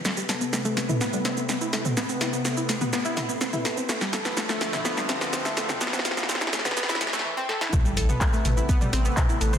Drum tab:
HH |----o-------o-------o-------o---|----o-------o-------o-------o---|----o-------o-------o-------o---|----o-------o-------o-----------|
SH |x-x-x-x-x-x-x-x-x-x-x-x-x-x-x-x-|x-x-x-x-x-x-x-x-x-x-x-x-x-x-x-x-|x-x-x-x-x-x-x-x-x-x-x-x-x-x-x-x-|x-x-x-x-x-x-x-x-x-x-x-x---------|
CP |--------------------------------|--------------------------------|--------------------------------|--------------------------------|
SD |o---o---o---o---o---o---o---o---|o---o---o---o---o---o---o---o---|o-o-o-o-o-o-o-o-o-o-o-o-o-o-o-o-|oooooooooooooooooooooooo----o-o-|
T2 |--------------o---------------o-|--------------o-----o-----o-----|--------------o---------------o-|--------------o-----o-----------|
BD |--------------------------------|--------------------------------|--------------------------------|--------------------------------|

HH |----o-------o-------o-------o---|
SH |x-x-x-x-x-x-x-x-x-x-x-x-x-x-x-x-|
CP |--------x---------------x-------|
SD |r---------r---------r---------r-|
T2 |o-----o-----o-----o-----o-----o-|
BD |o-------o-------o-------o-------|